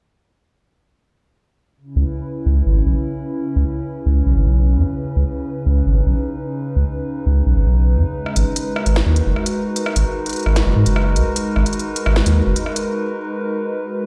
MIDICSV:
0, 0, Header, 1, 4, 480
1, 0, Start_track
1, 0, Tempo, 400000
1, 2116, Time_signature, 4, 2, 24, 8
1, 16874, End_track
2, 0, Start_track
2, 0, Title_t, "Analog synth pad"
2, 0, Program_c, 0, 89
2, 2115, Note_on_c, 0, 49, 64
2, 2204, Note_on_c, 0, 61, 74
2, 2224, Note_on_c, 0, 64, 70
2, 2327, Note_on_c, 0, 71, 77
2, 6999, Note_on_c, 0, 63, 70
2, 7142, Note_off_c, 0, 64, 0
2, 9793, Note_on_c, 0, 56, 80
2, 9795, Note_off_c, 0, 49, 0
2, 10263, Note_on_c, 0, 70, 79
2, 10418, Note_on_c, 0, 66, 80
2, 10564, Note_off_c, 0, 61, 0
2, 16874, Note_off_c, 0, 56, 0
2, 16874, Note_off_c, 0, 63, 0
2, 16874, Note_off_c, 0, 66, 0
2, 16874, Note_off_c, 0, 70, 0
2, 16874, Note_off_c, 0, 71, 0
2, 16874, End_track
3, 0, Start_track
3, 0, Title_t, "Sub bass"
3, 0, Program_c, 1, 38
3, 2354, Note_on_c, 1, 37, 93
3, 2450, Note_off_c, 1, 37, 0
3, 2953, Note_on_c, 1, 37, 80
3, 3145, Note_off_c, 1, 37, 0
3, 3194, Note_on_c, 1, 32, 94
3, 3385, Note_off_c, 1, 32, 0
3, 3432, Note_on_c, 1, 35, 101
3, 3529, Note_off_c, 1, 35, 0
3, 4274, Note_on_c, 1, 37, 96
3, 4370, Note_off_c, 1, 37, 0
3, 4873, Note_on_c, 1, 37, 83
3, 5065, Note_off_c, 1, 37, 0
3, 5113, Note_on_c, 1, 35, 85
3, 5210, Note_off_c, 1, 35, 0
3, 5236, Note_on_c, 1, 32, 77
3, 5331, Note_off_c, 1, 32, 0
3, 5355, Note_on_c, 1, 35, 90
3, 5715, Note_on_c, 1, 42, 75
3, 5733, Note_off_c, 1, 35, 0
3, 5811, Note_off_c, 1, 42, 0
3, 6196, Note_on_c, 1, 37, 94
3, 6291, Note_off_c, 1, 37, 0
3, 6794, Note_on_c, 1, 37, 86
3, 6985, Note_off_c, 1, 37, 0
3, 7034, Note_on_c, 1, 32, 90
3, 7225, Note_off_c, 1, 32, 0
3, 7275, Note_on_c, 1, 35, 98
3, 7370, Note_off_c, 1, 35, 0
3, 8114, Note_on_c, 1, 37, 92
3, 8210, Note_off_c, 1, 37, 0
3, 8715, Note_on_c, 1, 37, 83
3, 8906, Note_off_c, 1, 37, 0
3, 8955, Note_on_c, 1, 35, 96
3, 9050, Note_off_c, 1, 35, 0
3, 9076, Note_on_c, 1, 32, 76
3, 9171, Note_off_c, 1, 32, 0
3, 9195, Note_on_c, 1, 35, 88
3, 9555, Note_on_c, 1, 42, 78
3, 9573, Note_off_c, 1, 35, 0
3, 9650, Note_off_c, 1, 42, 0
3, 10035, Note_on_c, 1, 32, 96
3, 10131, Note_off_c, 1, 32, 0
3, 10634, Note_on_c, 1, 32, 83
3, 10825, Note_off_c, 1, 32, 0
3, 10874, Note_on_c, 1, 39, 92
3, 11065, Note_off_c, 1, 39, 0
3, 11115, Note_on_c, 1, 30, 103
3, 11211, Note_off_c, 1, 30, 0
3, 11953, Note_on_c, 1, 32, 94
3, 12049, Note_off_c, 1, 32, 0
3, 12554, Note_on_c, 1, 32, 90
3, 12745, Note_off_c, 1, 32, 0
3, 12794, Note_on_c, 1, 30, 91
3, 12890, Note_off_c, 1, 30, 0
3, 12914, Note_on_c, 1, 44, 79
3, 13010, Note_off_c, 1, 44, 0
3, 13032, Note_on_c, 1, 30, 94
3, 13393, Note_on_c, 1, 37, 74
3, 13411, Note_off_c, 1, 30, 0
3, 13489, Note_off_c, 1, 37, 0
3, 13875, Note_on_c, 1, 32, 100
3, 13970, Note_off_c, 1, 32, 0
3, 14475, Note_on_c, 1, 32, 90
3, 14666, Note_off_c, 1, 32, 0
3, 14714, Note_on_c, 1, 39, 97
3, 14905, Note_off_c, 1, 39, 0
3, 14957, Note_on_c, 1, 30, 102
3, 15051, Note_off_c, 1, 30, 0
3, 16874, End_track
4, 0, Start_track
4, 0, Title_t, "Drums"
4, 9915, Note_on_c, 9, 37, 45
4, 10034, Note_on_c, 9, 42, 70
4, 10035, Note_off_c, 9, 37, 0
4, 10154, Note_off_c, 9, 42, 0
4, 10274, Note_on_c, 9, 42, 80
4, 10394, Note_off_c, 9, 42, 0
4, 10514, Note_on_c, 9, 37, 71
4, 10634, Note_off_c, 9, 37, 0
4, 10635, Note_on_c, 9, 42, 43
4, 10754, Note_on_c, 9, 38, 106
4, 10755, Note_off_c, 9, 42, 0
4, 10874, Note_off_c, 9, 38, 0
4, 10995, Note_on_c, 9, 42, 66
4, 11115, Note_off_c, 9, 42, 0
4, 11235, Note_on_c, 9, 37, 44
4, 11354, Note_on_c, 9, 42, 82
4, 11355, Note_off_c, 9, 37, 0
4, 11474, Note_off_c, 9, 42, 0
4, 11714, Note_on_c, 9, 42, 69
4, 11834, Note_off_c, 9, 42, 0
4, 11834, Note_on_c, 9, 37, 73
4, 11953, Note_on_c, 9, 42, 80
4, 11954, Note_off_c, 9, 37, 0
4, 12073, Note_off_c, 9, 42, 0
4, 12313, Note_on_c, 9, 42, 44
4, 12353, Note_off_c, 9, 42, 0
4, 12353, Note_on_c, 9, 42, 39
4, 12394, Note_off_c, 9, 42, 0
4, 12394, Note_on_c, 9, 42, 30
4, 12434, Note_off_c, 9, 42, 0
4, 12434, Note_on_c, 9, 42, 25
4, 12474, Note_off_c, 9, 42, 0
4, 12474, Note_on_c, 9, 42, 21
4, 12513, Note_off_c, 9, 42, 0
4, 12513, Note_on_c, 9, 42, 16
4, 12554, Note_on_c, 9, 37, 46
4, 12633, Note_off_c, 9, 42, 0
4, 12674, Note_off_c, 9, 37, 0
4, 12674, Note_on_c, 9, 38, 108
4, 12674, Note_on_c, 9, 42, 71
4, 12794, Note_off_c, 9, 38, 0
4, 12794, Note_off_c, 9, 42, 0
4, 13034, Note_on_c, 9, 42, 78
4, 13153, Note_on_c, 9, 37, 75
4, 13154, Note_off_c, 9, 42, 0
4, 13273, Note_off_c, 9, 37, 0
4, 13394, Note_on_c, 9, 42, 68
4, 13514, Note_off_c, 9, 42, 0
4, 13633, Note_on_c, 9, 42, 83
4, 13753, Note_off_c, 9, 42, 0
4, 13873, Note_on_c, 9, 37, 50
4, 13993, Note_off_c, 9, 37, 0
4, 13993, Note_on_c, 9, 42, 45
4, 14074, Note_off_c, 9, 42, 0
4, 14074, Note_on_c, 9, 42, 36
4, 14154, Note_off_c, 9, 42, 0
4, 14154, Note_on_c, 9, 42, 33
4, 14274, Note_off_c, 9, 42, 0
4, 14353, Note_on_c, 9, 42, 71
4, 14473, Note_off_c, 9, 42, 0
4, 14474, Note_on_c, 9, 37, 74
4, 14593, Note_on_c, 9, 38, 103
4, 14594, Note_off_c, 9, 37, 0
4, 14713, Note_off_c, 9, 38, 0
4, 14714, Note_on_c, 9, 42, 89
4, 14834, Note_off_c, 9, 42, 0
4, 15074, Note_on_c, 9, 42, 71
4, 15194, Note_off_c, 9, 42, 0
4, 15194, Note_on_c, 9, 37, 51
4, 15314, Note_off_c, 9, 37, 0
4, 15314, Note_on_c, 9, 42, 81
4, 15434, Note_off_c, 9, 42, 0
4, 16874, End_track
0, 0, End_of_file